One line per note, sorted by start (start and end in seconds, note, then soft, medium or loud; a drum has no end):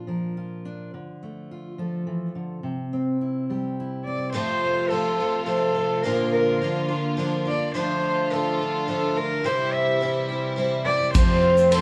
0.00 0.90 A#2 medium
0.00 0.64 D4 soft
0.00 0.36 F4 soft
0.07 1.77 F3 soft
0.07 0.90 A#4 soft
0.37 0.90 F4 soft
0.65 0.90 D4 soft
0.94 2.06 D3 medium
1.23 2.64 A3 soft
1.51 2.61 F4 soft
1.78 2.64 F3 soft
1.78 2.61 A4 soft
2.07 2.35 E3 medium
2.35 2.63 D3 soft
2.63 4.34 C3 medium
2.93 4.06 C4 soft
3.21 3.78 E4 soft
3.50 4.31 G3 soft
3.50 4.32 G4 medium
3.80 4.32 E4 soft
4.04 4.32 C4 soft
4.04 4.31 D5 medium
4.33 4.90 F2 medium
4.33 4.91 C3 medium
4.33 6.03 C3 medium
4.33 4.90 F3 medium
4.33 9.41 F3 medium
4.33 6.03 A3 medium
4.33 4.90 A3 loud
4.33 4.91 C4 medium
4.33 6.03 F4 medium
4.33 4.93 F4 medium
4.33 4.90 C5 loud
4.89 5.19 F3 medium
4.89 5.20 A3 medium
4.89 5.44 A4 loud
4.93 5.19 C4 medium
4.93 5.17 F4 medium
5.18 5.45 F3 soft
5.18 5.46 A3 soft
5.18 5.47 C4 medium
5.18 5.47 F4 medium
5.45 5.75 F3 medium
5.45 5.76 A3 medium
5.45 5.75 C4 medium
5.45 6.03 A4 loud
5.49 5.73 F4 medium
5.75 6.03 F3 soft
5.75 6.05 A3 soft
5.75 6.05 C4 soft
5.75 6.04 F4 medium
6.02 6.61 A#2 medium
6.02 7.73 D3 medium
6.02 6.61 F3 medium
6.02 7.73 A#3 medium
6.02 6.61 A#3 medium
6.02 6.63 D4 medium
6.02 7.73 F4 medium
6.02 6.32 A#4 loud
6.06 6.64 F4 loud
6.33 6.86 A#4 medium
6.62 6.90 F3 medium
6.62 6.90 A#3 medium
6.62 6.89 D4 medium
6.62 6.87 F4 medium
6.88 7.17 A#3 soft
6.88 7.18 D4 soft
6.88 7.17 F4 medium
7.17 7.46 F3 medium
7.17 7.47 A#3 medium
7.17 7.46 D4 medium
7.17 7.44 F4 medium
7.45 7.75 A#3 soft
7.45 7.75 D4 soft
7.45 7.74 F4 soft
7.45 7.73 D5 medium
7.74 9.43 D3 medium
7.74 8.31 D3 medium
7.74 8.29 F3 medium
7.74 9.43 A3 medium
7.74 8.30 A3 loud
7.74 8.31 D4 medium
7.74 9.43 F4 medium
7.74 8.32 F4 medium
7.74 8.34 C5 loud
8.30 8.59 F3 medium
8.30 8.60 A3 medium
8.30 8.60 D4 medium
8.30 8.58 F4 medium
8.30 8.88 A4 medium
8.59 8.88 A3 soft
8.59 8.88 D4 soft
8.59 8.88 F4 medium
8.88 9.16 F3 medium
8.88 9.17 A3 medium
8.88 9.16 D4 medium
8.88 9.14 F4 medium
8.88 9.18 A4 loud
9.15 9.45 A3 soft
9.15 9.45 D4 soft
9.15 9.44 F4 medium
9.15 9.47 A#4 loud
9.44 10.01 C3 medium
9.44 11.81 C3 medium
9.44 11.13 E3 medium
9.44 9.99 G3 medium
9.44 11.13 G3 medium
9.44 10.01 C4 medium
9.44 10.01 E4 medium
9.44 11.14 E4 medium
9.44 10.02 G4 medium
9.44 9.75 C5 loud
9.73 10.30 E5 loud
10.01 10.29 G3 medium
10.01 10.30 C4 medium
10.01 10.29 E4 medium
10.01 10.27 G4 medium
10.29 10.56 C4 soft
10.29 10.57 E4 soft
10.29 10.58 G4 medium
10.56 10.85 G3 medium
10.56 10.86 C4 medium
10.56 10.87 E4 medium
10.56 10.85 G4 medium
10.85 11.16 C4 soft
10.85 11.15 E4 soft
10.85 11.15 G4 soft
10.85 11.12 D5 loud
11.14 11.71 F2 medium
11.14 11.81 F2 loud
11.14 11.72 C3 medium
11.14 11.72 F3 medium
11.14 11.81 F3 medium
11.14 11.81 A3 medium
11.14 11.71 A3 medium
11.14 11.81 C4 loud
11.14 11.73 C4 medium
11.14 11.81 F4 medium
11.14 11.75 F4 medium
11.14 11.73 C5 loud
11.14 11.81 C5 medium
11.14 kick loud
11.14 ride medium
11.14 shaker medium
11.42 11.81 F5 medium
11.57 shaker medium
11.71 11.81 F3 medium
11.71 11.81 A3 medium
11.71 11.81 C4 medium
11.71 11.81 A4 loud
11.71 11.81 C6 loud
11.71 ride medium
11.71 shaker soft
11.75 11.81 F4 medium